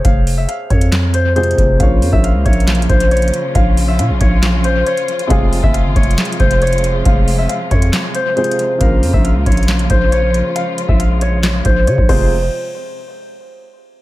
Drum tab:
CC |------------------------------------------------------------------------------------------------|------------------------------------------------------------------------------------------------|------------------------------------------------------------------------------------------------|------------------------------------------------------------------------------------------------|
HH |x-----------o-----------x-----------x-----x-----x-----------x-----------x---x---x---x-----------|x-----------o-----------x-----------x---x---x---x---x---x---x-----x-----x--x--x--x--x-----------|x-----------o-----------x-----------x-----------x-----------x-----------x-----x-----x-----x-----|x-----------o-----------x-----------x---x---x---x---x---x---x-----x-----x--x--x--x--x-----------|
CP |------------------------------------------------x-----------------------------------------------|------------------------------------------------x-----------------------------------------------|------------------------------------------------x-----------------------------------------------|------------------------------------------------x-----------------------------------------------|
SD |------------------------------------------------o-----------------------------------------------|------------------------------------------------o-----------------------------------------------|------------------------------------------------o-----------------------------------------------|------------------------------------------------o-----------------------------------------------|
BD |o-----------------------------------o-----------------------------------------------o-----------|o-----------------o-----------------o-----------------------o-----------------------------------|o-----------------------------------o-----------------------------------------------------------|o-----------------o-----------------o-----------------------o-----------------------------------|

CC |------------------------------------------------------------------------------------------------|------------------------------------------------------------------------------------------------|------------------------------------------------------------------------------------x-----------|------------------------------------------------------------------------------------------------|
HH |x-----------o-----------x-----------x-----x-----x-----------x-----------x---x---x---x-----------|x-----------o-----------x-----------x--x--x--x--x-----x-----x-----------x-----------x-----------|x-----------x-----------x-----------x-----------x-----------x-----------x-----------------------|------------------------------------------------------------------------------------------------|
CP |------------------------------------------------x-----------------------------------------------|------------------------------------------------x-----------------------------------------------|------------------------------------------------x-----------------------------------------------|------------------------------------------------------------------------------------------------|
SD |------------------------------------------------o-----------------------------------------------|------------------------------------------------o-----------------------------------------------|------------------------------------------------o-----------------------------------------------|------------------------------------------------------------------------------------------------|
BD |o-----------------------------------o-----------------------------------------------------------|o-----------------o-----------------o-----------------------o-----------------------------------|------------------o-----------------------------------------o-----------------o-----o-----------|------------------------------------------------------------------------------------------------|